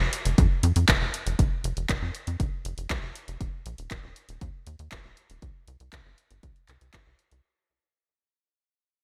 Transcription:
0.00 analog synth bass F1
0.13 closed hi-hat
0.25 analog synth bass F1, closed hi-hat
0.38 analog synth bass F2, kick, closed hi-hat
0.63 analog synth bass F2, closed hi-hat
0.76 analog synth bass F2, closed hi-hat
0.89 analog synth bass F1, kick, clap, closed hi-hat
1.01 analog synth bass F1
1.14 closed hi-hat
1.26 analog synth bass F1, closed hi-hat
1.39 analog synth bass F1, kick, closed hi-hat
1.64 analog synth bass F1, closed hi-hat
1.77 analog synth bass F1, closed hi-hat
1.89 analog synth bass F1, kick, clap, closed hi-hat
2.02 analog synth bass F2
2.15 closed hi-hat
2.27 analog synth bass F2, closed hi-hat
2.40 analog synth bass F1, kick, closed hi-hat
2.65 analog synth bass F1, closed hi-hat
2.78 analog synth bass F1, closed hi-hat
2.90 analog synth bass C2, kick, clap, closed hi-hat
3.03 analog synth bass F1
3.15 closed hi-hat
3.28 analog synth bass F1, closed hi-hat
3.41 analog synth bass D#1, kick, closed hi-hat
3.66 analog synth bass A#1, closed hi-hat
3.78 analog synth bass D#1, closed hi-hat
3.91 analog synth bass D#1, kick, clap, closed hi-hat
4.04 analog synth bass D#1
4.16 closed hi-hat
4.29 analog synth bass D#1, closed hi-hat
4.41 analog synth bass D#2, kick, closed hi-hat
4.67 analog synth bass D#2, closed hi-hat
4.79 analog synth bass D#2, closed hi-hat
4.92 analog synth bass D#1, kick, clap, closed hi-hat
5.04 analog synth bass D#1
5.17 closed hi-hat
5.30 analog synth bass D#1, closed hi-hat
5.42 analog synth bass C2, kick, closed hi-hat
5.68 analog synth bass C2, closed hi-hat
5.80 analog synth bass C2, closed hi-hat
5.93 analog synth bass C2, kick, clap, closed hi-hat
6.06 analog synth bass G1
6.18 closed hi-hat
6.31 analog synth bass G1, closed hi-hat
6.43 analog synth bass C2, kick, closed hi-hat
6.56 closed hi-hat
6.68 analog synth bass C2, clap, closed hi-hat
6.81 analog synth bass C2, closed hi-hat
6.94 analog synth bass G1, kick, clap, closed hi-hat
7.06 analog synth bass C2
7.19 closed hi-hat
7.31 analog synth bass C2, closed hi-hat

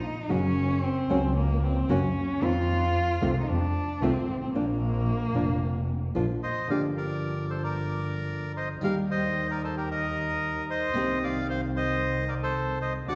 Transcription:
Already playing: cello D#4
0.23 cello D#4
0.29 double bass F#1, nylon-string guitar C#3 F#3 A#3 C#4 F#4, cello C#4
0.84 cello C4
1.09 double bass C#2, nylon-string guitar C#3 F#3 A#3 C#4 F#4
1.37 cello A#3
1.64 cello C4
1.89 double bass F#1, nylon-string guitar C#3 F#3 A#3 C#4 F#4, cello C#4
2.41 double bass F2, nylon-string guitar D#3 A#3 C4 F4, cello F4
3.21 double bass C2, nylon-string guitar C3 D#3 A3 C4 F4
3.41 cello D#4
3.48 double bass F2, cello D4
4.01 double bass C2, nylon-string guitar C3 D#3 A3 C4 F4, cello C4
4.28 double bass G#1
4.41 cello C4
4.54 double bass A#1, nylon-string guitar F3 A#3 D4 F4, cello A#3
5.34 double bass F1, nylon-string guitar F3 A#3 D4 F4
6.14 double bass A#1, nylon-string guitar F3 A#3 D4 F4
6.43 bandoneon C5 D#5
6.68 double bass G1, nylon-string guitar D3 F3 A#3 D4 G4, bandoneon D5 F5
6.97 bandoneon A#4 D5
7.50 bandoneon A4 C5
7.64 bandoneon A#4 D5
8.57 bandoneon C5 D#5
8.81 double bass D#2, nylon-string guitar D#3 G3 A#3 D#4, bandoneon A#4 F5
8.85 nylon-string guitar G4
9.11 bandoneon C5 D#5
9.51 bandoneon A#4 D5
9.64 bandoneon A4 C5
9.77 bandoneon G4 A#4
9.91 bandoneon A#4 D#5
10.70 bandoneon C5 D#5
10.93 double bass C2, nylon-string guitar C3 D#3 A#3 C4
10.97 nylon-string guitar G4
11.23 bandoneon D5 F5
11.49 bandoneon C5 F5
11.76 bandoneon C5 D#5
12.28 bandoneon A#4 D5
12.42 bandoneon A4 C5
12.81 bandoneon C5 D#5
13.06 double bass D2, nylon-string guitar D3 D4 F#4, bandoneon D5 F#5

